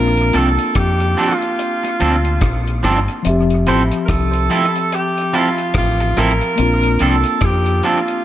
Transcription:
Already playing: A#1 A#3 C4 D4 F4 A#4
0.17 closed hi-hat
0.33 C2 F3 C4 D4 A4, closed hi-hat, cabasa
0.37 A4
0.59 closed hi-hat, cabasa
0.75 F2 G4, kick, cross-stick, closed hi-hat
1.00 closed hi-hat, cabasa
1.17 F3 C4 D4 A4, open hi-hat, cabasa
1.21 F4
1.42 closed hi-hat
1.59 closed hi-hat, cabasa
1.83 muted clean electric guitar stroke, closed hi-hat, cabasa
2.00 D2 F3 C4 D4 A4, closed hi-hat, cabasa
2.25 closed hi-hat
2.41 A#1, kick, cross-stick, closed hi-hat
2.67 closed hi-hat, cabasa
2.83 G1 F3 C4 D4 A4, cross-stick, closed hi-hat, cabasa
3.08 closed hi-hat
3.23 F1 F3 C4, closed hi-hat, cabasa
3.27 G4 E5
3.50 closed hi-hat
3.67 A1 F3 C4 E4 A4 C5, closed hi-hat, cabasa
3.91 closed hi-hat, cabasa
4.05 A#4, kick, cross-stick, closed hi-hat
4.10 C2 A4
4.33 closed hi-hat, cabasa
4.50 F3 C4 E4 A4, closed hi-hat, cabasa
4.76 closed hi-hat
4.92 G4, closed hi-hat, cabasa
5.17 closed hi-hat, cabasa
5.33 F3 C4 E4 F4 A4, closed hi-hat, cabasa
5.58 closed hi-hat
5.74 A1 F4, kick, cross-stick, closed hi-hat
6.00 muted clean electric guitar stroke, closed hi-hat, cabasa
6.17 A1 F3 C4 E4 A4 A#4, cross-stick, closed hi-hat, cabasa
6.41 closed hi-hat
6.56 A#1 A#3 C4 D4, closed hi-hat, cabasa
6.62 F4
6.83 closed hi-hat
6.99 C2 F3 C4 D4 A4, closed hi-hat, cabasa
7.24 closed hi-hat, cabasa
7.41 F2 G4, kick, cross-stick, closed hi-hat
7.66 closed hi-hat, cabasa
7.83 F3 C4 D4 F4 A4, closed hi-hat, cabasa
8.08 closed hi-hat

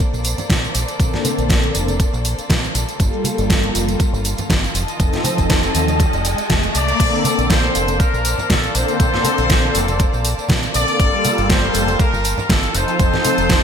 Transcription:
Already playing: A#3 A4 C5 D5
0.00 kick, closed hi-hat, tambourine
0.13 A#1, tambourine, maracas
0.24 open hi-hat, tambourine, maracas
0.38 closed hi-hat, tambourine, low conga, maracas
0.50 A#1, kick, snare, closed hi-hat, tambourine, high conga, maracas
0.63 tambourine, maracas
0.75 A#1, open hi-hat, tambourine, maracas
0.88 closed hi-hat, tambourine, maracas
0.98 A#1 D3 A#3 C4 A4, kick, closed hi-hat, tambourine, maracas
1.13 snare, low conga, maracas
1.25 open hi-hat, tambourine, high conga, maracas
1.38 A#1, closed hi-hat, tambourine, maracas
1.49 kick, snare, closed hi-hat, tambourine, maracas
1.64 closed hi-hat, maracas
1.74 F1 D3 A#3 C4 A4, open hi-hat, tambourine, maracas
1.88 closed hi-hat, tambourine, high conga, maracas
2.00 kick, closed hi-hat, tambourine, maracas
2.13 A#1, tambourine, maracas
2.25 open hi-hat, tambourine, maracas
2.39 closed hi-hat, tambourine, maracas
2.50 A#1, kick, snare, closed hi-hat, tambourine, high conga, maracas
2.64 tambourine, maracas
2.75 A#1, open hi-hat, tambourine, maracas
2.89 closed hi-hat, tambourine, maracas
2.99 G1 G3 A#3 F4 A4, kick, closed hi-hat, tambourine, riser, maracas
3.13 maracas
3.24 open hi-hat, tambourine, high conga, maracas
3.38 G1, closed hi-hat, tambourine, maracas
3.50 kick, snare, closed hi-hat, tambourine, maracas
3.64 closed hi-hat, maracas
3.74 F1 G3 A#3 F4 A4, open hi-hat, tambourine, maracas
3.88 closed hi-hat, tambourine, high conga, maracas
4.00 kick, closed hi-hat, tambourine, maracas
4.13 G1, tambourine, maracas
4.25 open hi-hat, tambourine, maracas
4.37 closed hi-hat, tambourine, low conga, maracas
4.50 G1, kick, snare, closed hi-hat, tambourine, high conga, maracas
4.64 tambourine, maracas
4.74 F1 D#5 A5, open hi-hat, tambourine, maracas
4.88 closed hi-hat, tambourine, maracas
4.99 F1 F3 C4 D#4 A4, kick, closed hi-hat, tambourine, maracas
5.12 snare, closed hi-hat, tambourine, low conga, maracas
5.24 open hi-hat, tambourine, high conga, maracas
5.38 F1, kick, closed hi-hat, tambourine, maracas
5.50 kick, snare, closed hi-hat, tambourine, maracas
5.63 closed hi-hat, tambourine, maracas
5.74 D#2 F3 C4 D#4 A4, open hi-hat, tambourine, maracas
5.88 closed hi-hat, tambourine, high conga, maracas
5.99 kick, closed hi-hat, tambourine, maracas
6.13 F1, closed hi-hat, tambourine, maracas
6.25 open hi-hat, tambourine, maracas
6.38 closed hi-hat, tambourine, maracas
6.50 F1, kick, snare, closed hi-hat, tambourine, high conga, maracas
6.63 closed hi-hat, tambourine, maracas
6.74 C2 D5, open hi-hat, tambourine, maracas
6.88 closed hi-hat, tambourine, maracas
6.98 A#1 D3 A#3 C4 A4 C5 D5 A5, kick, closed hi-hat, crash, tambourine, maracas
7.13 maracas
7.24 open hi-hat, tambourine, high conga, maracas
7.38 A#1, closed hi-hat, tambourine, maracas
7.50 C5, kick, snare, closed hi-hat, tambourine, maracas
7.63 maracas
7.74 F1 D3 A#3 C4 A4, open hi-hat, tambourine, maracas
7.88 closed hi-hat, tambourine, high conga, maracas
8.00 A#4, kick, closed hi-hat, tambourine, maracas
8.14 A#1, tambourine, maracas
8.25 open hi-hat, tambourine, maracas
8.38 muted fingered electric bass stroke, tambourine, low conga, maracas
8.50 A#1 A4, kick, snare, closed hi-hat, tambourine, high conga, maracas
8.64 closed hi-hat, tambourine, maracas
8.74 A#1 D3 A#3 C4 A4 C5, open hi-hat, tambourine, maracas
8.88 closed hi-hat, tambourine, maracas
8.99 A#1 D3 A#3 C4 A4, kick, closed hi-hat, tambourine, maracas
9.13 snare, low conga, maracas
9.24 open hi-hat, tambourine, high conga, maracas
9.38 A#1, closed hi-hat, tambourine, maracas
9.49 kick, snare, closed hi-hat, tambourine, maracas
9.63 maracas
9.74 F1 D3 A#3 C4 A4, open hi-hat, tambourine, maracas
9.88 closed hi-hat, tambourine, high conga, maracas
9.99 kick, closed hi-hat, tambourine, maracas
10.13 A#1, tambourine, maracas
10.25 open hi-hat, tambourine, maracas
10.38 muted fingered electric bass stroke, tambourine, maracas
10.49 A#1, kick, snare, closed hi-hat, tambourine, high conga, maracas
10.63 closed hi-hat, tambourine, maracas
10.74 A#1 D3 A#3 C4 A4 D5, open hi-hat, tambourine, maracas
10.88 closed hi-hat, tambourine, maracas
10.98 G1 G3 A#3 F4 A4 A5, kick, closed hi-hat, tambourine, maracas
11.13 maracas
11.24 open hi-hat, tambourine, high conga, maracas
11.38 G1, closed hi-hat, tambourine, maracas
11.50 C5, kick, snare, closed hi-hat, tambourine, maracas
11.63 maracas
11.74 F1 G3 A#3 F4 A4, open hi-hat, tambourine, maracas
11.87 closed hi-hat, tambourine, high conga, maracas
12.00 A#4, kick, closed hi-hat, tambourine, maracas
12.13 G1, tambourine, maracas
12.24 open hi-hat, tambourine, maracas
12.38 muted fingered electric bass stroke, tambourine, low conga, maracas
12.49 G1 A4, kick, snare, closed hi-hat, tambourine, high conga, maracas
12.63 closed hi-hat, tambourine, maracas
12.74 F1 F3 C4 D#4 A4 C5 A5, open hi-hat, tambourine, maracas
12.88 closed hi-hat, tambourine, maracas
12.99 F1 F3 C4 D#4 A4, kick, closed hi-hat, tambourine, maracas
13.14 snare, low conga, maracas
13.25 open hi-hat, tambourine, high conga, maracas
13.38 F1, closed hi-hat, tambourine, maracas
13.49 kick, snare, closed hi-hat, tambourine, maracas

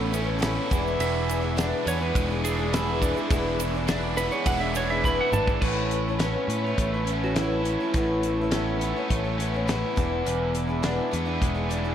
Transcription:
Already playing: A1 A2 A3 B3 C#4 E4 A4
0.00 B3 C#4 E4
0.11 E3 B3 C#4 E4, ride, shaker
0.24 B3 C#4 E4
0.39 A2 E3 B3 C#4 E4, ride
0.43 snare, shaker
0.70 E1 E2 B2 E3 G#3 D4 E4 G#4 B4, kick, ride, shaker
0.87 shaker
0.99 E1 E2 E5, ride, shaker
1.27 E3 G#3 D4 E4, ride, shaker
1.42 E3 G#3 D4 E4
1.56 E2 B2 E3 G#3 D4 E4, snare, ride, shaker
1.85 E2 E3 G#3 B3 D4 E4 C#5, ride, shaker
2.01 E3 G#3 D4 E4 B4
2.15 E1 G#3, kick, ride, shaker
2.30 E3 G#3 D4 E4
2.44 E3 G#3 D4 E4 G#4, ride, shaker
2.59 E3 G#3 D4 E4
2.72 E2 B2 E3 G#3 D4 E4, snare, ride, shaker
3.01 D4 E4 G#4 B4 D5, kick, ride, shaker
3.14 E3 G#3 D4 E4, shaker
3.30 E1 E2 B2 E3 G#3 D4 E4, kick, ride, shaker
3.59 E3 G#3 D4 E4, ride, shaker
3.75 E3 G#3 D4 E4
3.87 E2 B2 E3 G#3 D4 E4, snare, ride, shaker
4.16 E3 G#3 B3 D4 E4 B4, ride, shaker
4.31 E3 G#3 D4 E4 C#5, shaker
4.44 E1 G#3 F#5, kick, ride, shaker
4.60 E3 G#3 D4 E4 E5
4.75 E3 G#3 D4 E4 C#5, ride, shaker
4.89 E3 G#3 D4 E4 E5
5.03 E2 B2 E3 G#3 E4 B5, kick, shaker
5.07 D4 E4
5.21 F#5
5.31 G#1 D4 A5, mid tom, shaker
5.47 G#3 D4 E4, kick, shaker
5.52 E3
5.61 A1 A2 E3 C#4 E4 A4 B4, kick, crash
5.65 B3 C#4 E4
5.77 C#5
5.91 E3 B3 C#4, closed hi-hat
5.96 E4
6.08 B3 C#4 E4
6.19 C#4, snare, closed hi-hat
6.23 A2 E3 B3 C#4 E4
6.48 A2 E3 B3, closed hi-hat
6.52 B3 C#4 E4
6.64 C#4 E4 C#5
6.69 B3
6.77 A1 A3, kick, closed hi-hat
6.93 C#4 E4 B4
6.97 B3
7.05 E3 C#4, closed hi-hat
7.10 B3 C#4 E4
7.24 B3 C#4 E4 F#4
7.34 A2 E3 B3 C#4 E4, snare, closed hi-hat
7.39 E4
7.63 C#4, closed hi-hat
7.80 B3 C#4 E4
7.92 A1 A2 B3 C#4 E4 A4, kick, closed hi-hat
7.96 A2 E3 B3 C#4 E4
8.23 E3 B3, closed hi-hat
8.27 C#4 E4
8.41 B3 C#4 E4
8.51 A2 E3 B3 C#4, snare, closed hi-hat
8.55 C#4 E4
8.79 E3 B3, closed hi-hat
8.85 C#4 E4
8.96 B3 C#4 E4
9.08 A1 A3, kick, closed hi-hat
9.24 B3 C#4 E4
9.38 E3 B3 C#4, closed hi-hat
9.42 E4
9.54 B3 C#4 E4
9.66 A2 E3 B3 C#4 E4, snare, closed hi-hat
9.96 E1 E2 B2 E3 G#3 D4 E4 G#4 B4, kick, closed hi-hat
10.25 E1 E2, closed hi-hat
10.54 E3 G#3 D4 E4, closed hi-hat
10.67 E3 G#3 D4 E4
10.83 E2 B2 E3 G#3 D4 E4, snare, closed hi-hat
11.11 E2 E3 G#3 B3 D4 E4, closed hi-hat
11.26 E3 G#3 D4 E4
11.41 E1 G#3, kick, closed hi-hat
11.55 E3 G#3 D4 E4
11.70 E3 G#3 D4 E4, closed hi-hat
11.84 E3 G#3 D4 E4

